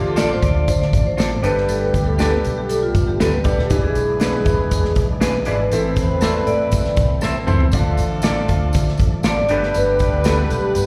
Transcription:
Already playing: fingered electric bass A1, grand piano D3, horn section F3 A3 D4 F4, tonewheel organ F3 A3 D4
0.08 vibraphone A4
0.16 grand piano D4 F4 A4 D5, clean electric guitar F4 A4 D5, snare, closed hi-hat, tambourine
0.33 vibraphone C5
0.43 fingered electric bass D2, vibraphone D5, kick, closed hi-hat, tambourine
0.68 fingered electric bass D3, vibraphone C5, kick, closed hi-hat, tambourine
0.82 vibraphone D5, snare
0.93 fingered electric bass A1, kick, closed hi-hat, tambourine
1.07 vibraphone C5
1.17 clean electric guitar F4 A4 D5, snare, closed hi-hat, tambourine
1.42 fingered electric bass G1, grand piano G2 D4 G4 A4 B4, horn section G3 B3 D4 G4, tonewheel organ G3 A3 B3, clean electric guitar D4 A4 B4, vibraphone B4, closed hi-hat, tambourine
1.57 snare
1.68 fingered electric bass G1, vibraphone A4, closed hi-hat, tambourine
1.81 vibraphone B4
1.94 fingered electric bass D2, kick, closed hi-hat, tambourine
2.06 vibraphone A4
2.18 clean electric guitar D4 A4 B4, grand piano D4 G4 A4 B4, vibraphone A4, snare, closed hi-hat, tambourine
2.30 vibraphone B4
2.44 fingered electric bass B1, closed hi-hat, tambourine
2.58 vibraphone G4
2.69 vibraphone A4, closed hi-hat, tambourine
2.83 vibraphone F4
2.95 fingered electric bass G2, kick, closed hi-hat, tambourine
3.08 vibraphone G4
3.20 fingered electric bass D2, clean electric guitar D4 A4 B4, vibraphone A4, snare, closed hi-hat, tambourine
3.34 vibraphone B4
3.44 fingered electric bass E1, grand piano D4 G4 A4 D5, kick, closed hi-hat, tambourine
3.58 fingered electric bass D#1, vibraphone G4, snare
3.69 fingered electric bass E1, grand piano E3 D4 E4 G#4 B4, tonewheel organ E3 G#3 D4, horn section B3 E4 G#4 B4, kick, closed hi-hat, tambourine
3.84 vibraphone G#4
3.95 fingered electric bass B1, closed hi-hat, tambourine
4.20 grand piano D4 E4 G#4 A4, clean electric guitar D4 G#4 B4, snare, closed hi-hat, tambourine
4.27 grand piano B4
4.45 fingered electric bass E2, kick, closed hi-hat, tambourine
4.71 fingered electric bass E2, kick, closed hi-hat, tambourine
4.84 snare
4.96 fingered electric bass B1, kick, closed hi-hat, tambourine
5.21 clean electric guitar D4 G#4 B4, vibraphone B4, snare, closed hi-hat, tambourine
5.45 fingered electric bass G#1, grand piano D4 E4 G#4 D5, clean electric guitar D4 G#4 B4, vibraphone B4, closed hi-hat, tambourine
5.71 fingered electric bass A1, grand piano A2 C4 E4 A4 E5, tonewheel organ A3 C4, horn section B3 C4 E4 B4, vibraphone A4, closed hi-hat, tambourine
5.96 fingered electric bass E2, vibraphone C5, kick, closed hi-hat, tambourine
6.21 grand piano C4 E4 A4 D5, clean electric guitar A4 C5 E5, vibraphone A4, snare, closed hi-hat, tambourine
6.47 fingered electric bass A2, vibraphone D5, closed hi-hat, tambourine
6.71 fingered electric bass A2, kick, closed hi-hat, tambourine
6.85 snare
6.97 fingered electric bass C2, kick, closed hi-hat, tambourine
7.21 fingered electric bass A1, clean electric guitar A4 C5 E5, grand piano A5, snare, tambourine
7.47 fingered electric bass C#2, grand piano C4 E4 A4 C5, mid tom, tambourine
7.60 floor tom
7.72 fingered electric bass D2, grand piano D3 D4 F4 A4 D5, tonewheel organ F3 D4, horn section A3 D4 F4 A4, kick, closed hi-hat, tambourine
7.97 fingered electric bass A1, closed hi-hat, tambourine
8.22 grand piano D4 E4 A4 D5, clean electric guitar F4 A4 D5, snare, closed hi-hat, tambourine
8.30 grand piano F4
8.48 fingered electric bass D2, kick, closed hi-hat, tambourine
8.73 fingered electric bass D3, kick, closed hi-hat, tambourine
8.88 snare
8.98 fingered electric bass A1, kick, closed hi-hat, tambourine
9.23 clean electric guitar F4 A4 D5, vibraphone D5, snare, closed hi-hat, tambourine
9.49 fingered electric bass G1, grand piano G2 D4 G4 A4 B4, tonewheel organ G3 B3, horn section B3 D4 G4 B4, clean electric guitar D4 A4 B4, vibraphone D5, closed hi-hat, tambourine
9.63 snare
9.74 fingered electric bass G1, vibraphone B4, closed hi-hat, tambourine
9.99 vibraphone D5, kick, closed hi-hat, tambourine
10.13 fingered electric bass D2
10.24 grand piano D4 G4 A4 B4, clean electric guitar D4 A4 B4, vibraphone A4, snare, closed hi-hat, tambourine
10.50 fingered electric bass B1, vibraphone G4, closed hi-hat, tambourine
10.75 fingered electric bass G2, closed hi-hat, tambourine

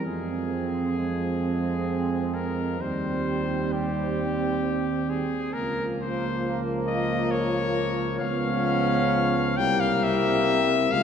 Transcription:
0.05 tuba F2, euphonium F3, trombone G#3, french horn section C4, cornet G#4
0.52 trombone C4
0.97 trombone G#3
2.34 cornet A#4
2.79 tuba D#2, euphonium G3, trombone G3, french horn section C4, cornet C5
3.73 cornet G4
5.09 cornet G#4
5.53 tuba C#2, euphonium F3, trombone A#3, french horn section A#3, cornet A#4
6.01 cornet C5
6.87 cornet D#5
7.31 cornet C#5
8.19 tuba C#2, euphonium F3, french horn section B3, trombone C#4, cornet F5
9.57 tuba C2, euphonium G3, trombone A#3, french horn section C4, cornet G5
9.80 cornet F5
10.03 cornet E5
10.91 tuba C#2, euphonium F3, trombone G#3, french horn section F4, cornet F5

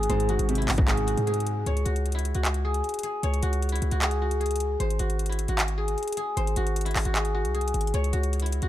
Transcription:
Already playing: grand piano G#2 C3 G#3, guzheng E4 F#4 G#4
0.03 closed hi-hat
0.09 808-style bass G#1, grand piano G#2, guzheng C5, closed hi-hat
0.20 closed hi-hat
0.29 grand piano G#2, guzheng F#4, closed hi-hat
0.39 808-style bass G#1, closed hi-hat
0.49 grand piano C3, closed hi-hat
0.55 guzheng E4, closed hi-hat
0.62 closed hi-hat
0.68 808-style bass G#1, grand piano G#2, clap, open hi-hat
0.78 guzheng F#4, kick, closed hi-hat
0.88 grand piano G#2, guzheng G#4, clap, closed hi-hat
0.97 closed hi-hat
1.07 guzheng F#4, closed hi-hat
1.17 808-style bass G#2, closed hi-hat
1.27 grand piano G#3, guzheng G#4, closed hi-hat
1.34 closed hi-hat
1.40 closed hi-hat
1.47 closed hi-hat
1.66 808-style bass C#2, guzheng C#5, closed hi-hat
1.77 closed hi-hat
1.85 808-style bass C#2, guzheng F#4, closed hi-hat
1.96 closed hi-hat
2.06 closed hi-hat
2.12 guzheng E4, closed hi-hat
2.19 closed hi-hat
2.25 closed hi-hat
2.35 808-style bass C#2, guzheng F#4, closed hi-hat
2.45 clap, closed hi-hat
2.54 closed hi-hat
2.65 guzheng G#4
2.74 closed hi-hat
2.84 closed hi-hat
2.89 closed hi-hat
2.94 closed hi-hat
2.99 closed hi-hat
3.03 guzheng G#4, closed hi-hat
3.23 808-style bass C#2, guzheng C#5, closed hi-hat
3.34 closed hi-hat
3.43 808-style bass C#2, guzheng F#4, closed hi-hat
3.53 closed hi-hat
3.62 closed hi-hat
3.69 guzheng E4, closed hi-hat
3.76 closed hi-hat
3.82 808-style bass C#2, closed hi-hat
3.91 808-style bass C#2, guzheng F#4, closed hi-hat
4.02 guzheng G#4, clap, closed hi-hat
4.11 closed hi-hat
4.22 guzheng F#4
4.31 closed hi-hat
4.40 guzheng G#4, closed hi-hat
4.46 closed hi-hat
4.51 closed hi-hat
4.56 closed hi-hat
4.60 closed hi-hat
4.80 808-style bass G#1, guzheng C5, closed hi-hat
4.90 closed hi-hat
4.99 808-style bass G#1, guzheng F#4, closed hi-hat
5.10 closed hi-hat
5.19 closed hi-hat
5.26 guzheng E4, closed hi-hat
5.32 closed hi-hat
5.39 closed hi-hat
5.48 808-style bass G#1, guzheng F#4, closed hi-hat
5.58 clap, closed hi-hat
5.68 closed hi-hat
5.78 guzheng G#4
5.88 closed hi-hat
5.98 closed hi-hat
6.03 closed hi-hat
6.08 closed hi-hat
6.12 closed hi-hat
6.17 guzheng G#4, closed hi-hat
6.37 808-style bass G#1, guzheng C5, closed hi-hat
6.47 closed hi-hat
6.56 808-style bass G#1, guzheng F#4, closed hi-hat
6.67 closed hi-hat
6.76 closed hi-hat
6.81 closed hi-hat
6.85 guzheng E4, closed hi-hat
6.91 closed hi-hat
6.96 808-style bass G#1, clap, open hi-hat
7.05 808-style bass G#1, guzheng F#4, closed hi-hat
7.15 guzheng G#4, clap, closed hi-hat
7.25 closed hi-hat
7.35 guzheng F#4
7.45 808-style bass C2, closed hi-hat
7.54 guzheng G#4, closed hi-hat
7.61 closed hi-hat
7.68 closed hi-hat
7.74 808-style bass G#1, closed hi-hat
7.81 closed hi-hat
7.87 closed hi-hat
7.94 808-style bass C#2, guzheng C#5, closed hi-hat
8.04 closed hi-hat
8.13 808-style bass C#2, guzheng F#4, closed hi-hat
8.23 closed hi-hat
8.33 closed hi-hat
8.40 guzheng E4, closed hi-hat
8.46 closed hi-hat
8.52 closed hi-hat
8.62 808-style bass C#2, guzheng F#4, closed hi-hat

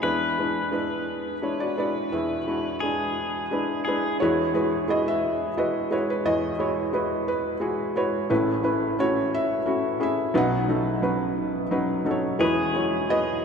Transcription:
Already playing: pedal steel guitar G#4
0.02 felt piano E2 E3 G#3 B3 D4 E4 G#4 B4, pedal steel guitar B4
0.39 felt piano G#3 D4 E4 B4
0.71 felt piano G#3 D4 E4 B4
1.42 felt piano G#3 D4 E4 C#5
1.60 felt piano F#4 D5
1.77 felt piano G#3 D4 E4 F#4 B4 D5
2.12 felt piano E2 E3 G#4 E5
2.47 felt piano G#3 D4 E4 F#4
2.80 felt piano G#3 D4 E4 G#4, pedal steel guitar G#4
3.51 felt piano G#3 D4 E4 B4
3.85 felt piano G#3 D4 E4 B4, pedal steel guitar G#4
4.20 felt piano E2 E3 G#3 E4 F#4 G#4 B4 C#5
4.54 felt piano G#3 E4 F#4 G#4 B4
4.88 felt piano G#3 E4 F#4 G#4 D#5
5.08 felt piano E5
5.57 felt piano G#3 E4 F#4 B4 D#5
5.91 felt piano G#3 E4 F#4 B4 C#5
6.10 felt piano B4
6.25 felt piano E2 E3 G#4 D#5
6.59 felt piano G#3 E4 F#4 C#5
6.93 felt piano G#3 E4 F#4 B4
7.28 felt piano B4
7.60 felt piano G#3 E4 F#4 G#4
7.96 felt piano G#3 E4 F#4 B4 C#5
8.30 felt piano A1 A2 A3 C#4 E4 B4
8.63 felt piano A3 C#4 E4 B4
8.98 felt piano A3 C#4 E4 F#4 C#5
9.34 felt piano E5
9.66 felt piano A3 C#4 E4 F#4
10.00 felt piano A3 C#4 E4 G#4 E5
10.34 felt piano B1 B2 F#3 C#4 D#4 B4 D#5 F#5
10.68 felt piano F#3 C#4 D#4 A4
11.02 felt piano F#3 C#4 D#4 B4
11.71 felt piano F#3 C#4 D#4 B4
12.05 felt piano F#3 C#4 D#4 A4
12.11 felt piano C#5
12.39 felt piano E2 E3 G#3 E4 F#4 G#4 B4, pedal steel guitar G#4
12.43 felt piano B4
12.74 felt piano G#3 E4 F#4 C#5
13.09 felt piano G#3 E4 F#4 B4 D#5

